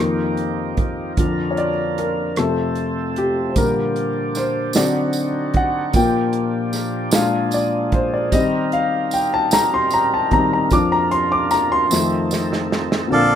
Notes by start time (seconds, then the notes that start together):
Already playing: F2 D#3 A#3 G4
0.00 F3 D#4
0.37 closed hi-hat
0.77 kick, closed hi-hat
1.17 F2 D3 F3 D4 A#4, kick, closed hi-hat
1.51 C#5
1.57 D5, closed hi-hat
1.98 A#4, cross-stick, closed hi-hat
2.36 F2 C3 A3 C4 A4, cross-stick, closed hi-hat
2.75 closed hi-hat
3.16 G4, closed hi-hat
3.49 C5
3.56 A#2 D3 G3 A#3 D4 G4 A#4, kick, closed hi-hat, tambourine
3.96 closed hi-hat
4.35 C5, snare, closed hi-hat, tambourine
4.73 D3 F#3 C4 D#4 F#4 D5, snare, closed hi-hat, tambourine
5.13 closed hi-hat, tambourine
5.54 F#5, kick, closed hi-hat
5.92 A#2 F3 A#3 G4 G5, kick, closed hi-hat, tambourine
6.33 closed hi-hat
6.73 snare, closed hi-hat, tambourine
7.11 A#2 G#3 A#3 D4 G#4 F5, snare, closed hi-hat, tambourine
7.51 D5, closed hi-hat, tambourine
7.92 C5, kick, closed hi-hat
8.14 D5
8.32 D#3 G3 C4 D#4 A#4 D#5, kick, closed hi-hat, tambourine
8.72 F5, closed hi-hat
9.11 G5, closed hi-hat, tambourine
9.34 A5
9.51 A#5, snare, closed hi-hat, tambourine
9.74 C6
9.90 A#5, closed hi-hat, tambourine
10.14 A5
10.31 D#3 G3 C4 A#5, kick, closed hi-hat
10.53 A#5
10.71 F2 F3 A#3 D4 D6, kick, closed hi-hat, tambourine
10.92 A#5
11.11 C6, closed hi-hat
11.32 D6
11.51 A#5, snare, closed hi-hat, tambourine
11.72 C6
11.90 F2 D#3 A3 C4 D#4 A4, snare, tambourine
12.31 snare, tambourine
12.53 snare
12.72 snare
12.92 snare
13.07 A#1 A#2 D3 A#3 C4 F4 A4
13.11 A#3 C4 A4 D5 F5